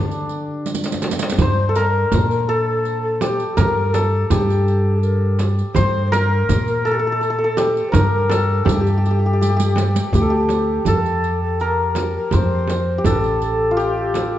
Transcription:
Already playing: D3 D4 G4 A4
0.11 riq, tombak ka
0.29 riq, tombak ka
0.66 riq, tombak tek
0.74 riq, tombak ka
0.84 riq, tombak tek
0.92 riq, tombak ka
1.02 riq, tombak tek, frame drum
1.11 riq, tombak ka
1.19 riq, tombak tek
1.30 riq, tombak ka
1.38 G2 C5, riq, frame drum, tombak dum
1.69 A4
1.75 A#4, riq, tombak tek
2.12 A#2, riq, frame drum, tombak dum
2.29 A#4, riq
2.39 A#4
2.47 A4, riq
2.85 riq
3.02 A4
3.15 A4
3.21 G4, riq, tombak tek, frame drum
3.40 riq
3.57 G2 A#4, riq, frame drum, tombak dum
3.93 A4, riq, tombak tek, frame drum
4.28 G2 G4, riq, frame drum, tombak dum
4.50 riq
4.68 riq
5.03 A#4, riq
5.39 riq, tombak tek, frame drum
5.59 riq
5.74 G2 C5, riq, frame drum, tombak dum
6.06 C5
6.12 A#4, riq, tombak tek, frame drum
6.49 A#2, riq, frame drum, tombak dum
6.68 A#4, riq
6.85 A4, riq
6.91 G4 A4
6.99 A4
7.07 A4
7.12 A4
7.21 A4, riq
7.30 A4
7.39 A4
7.44 A4
7.57 G4, riq, tombak tek, frame drum
7.77 riq
7.88 A#4 C5
7.94 G2 A#4, riq, frame drum, tombak dum
8.29 A4, riq, tombak tek, frame drum
8.65 G2 G4, frame drum, tombak dum
8.69 riq
8.74 G4
8.81 G4
8.85 riq, tombak ka
8.89 G4
8.98 G4
9.06 G4, riq
9.11 G4
9.19 G4
9.26 G4
9.33 G4
9.41 G4, riq
9.50 G4
9.57 G4, riq
9.76 riq, tombak tek, frame drum
9.95 riq, tombak ka
10.12 D2 G4, riq, tombak dum, frame drum
10.21 A4
10.29 G4
10.49 riq, tombak tek, frame drum
10.85 F2 A4, riq, frame drum, tombak dum
10.95 A#4
11.02 A4, riq
11.06 tombak ka
11.24 riq
11.43 A4
11.60 A#4, riq
11.95 riq, tombak tek, frame drum
12.16 A#4
12.31 F2 C5, riq, frame drum, tombak dum
12.68 riq, tombak tek, frame drum
12.98 G4
13.04 A1 A4, riq, frame drum, tombak dum
13.24 riq, tombak ka
13.42 riq
13.71 F4
13.77 G4, riq
14.14 riq, tombak tek, frame drum

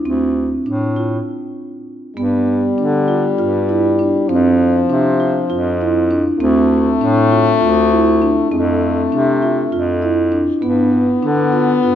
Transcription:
0.05 D2 C4
0.66 A2 D4
0.96 F4
2.16 G2 G3 B3
2.78 D3 D4
3.08 F4
3.38 G2 F4
3.69 E4
3.99 D4
4.29 F2 F3 C4
4.90 C3 D4
5.20 F4
5.50 F2 F4
5.81 E4
6.11 D4
6.40 D2 A3 C4
7.01 A2 D4
7.32 F4
7.61 D2 F4
7.91 E4
8.22 D4
8.51 F2 A3 C4
9.12 C3 D4
9.42 F4
9.72 F2 F4
10.02 E4
10.32 D4
10.62 G2 B3
11.23 D3 D4
11.53 F4
11.83 G2 F4

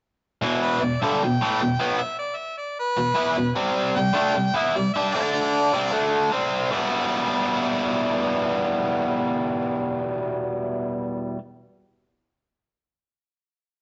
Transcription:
0.42 E2 B2 E3
0.62 B4
0.81 E2 B2 D5
1.02 G2 D3 G3 E5
1.20 E2 G5
1.24 B2
1.41 A2 E3 A3
1.61 E2 B2
1.80 B2 F#3 B3
1.98 E5, muted overdriven electric guitar stroke
2.19 D5
2.37 E5
2.58 D5
2.79 B4
2.97 E2 B2
3.15 E3 B3 E4
3.36 E2 B2
3.55 C3 G3 C4
3.96 C3 G3 G5
4.13 D3 A3 D4
4.35 C3 G3
4.54 E3 B3 E4 E5
4.75 C3 G3 D5
4.94 G3 D4 G4 E5
5.12 D3 A3 D5
5.16 D4
5.32 D5
5.73 C3 G3 C4
5.91 D3 A3 D4
6.31 C3 G3 C4
6.70 E2 B2 E3 G3 B3 E4

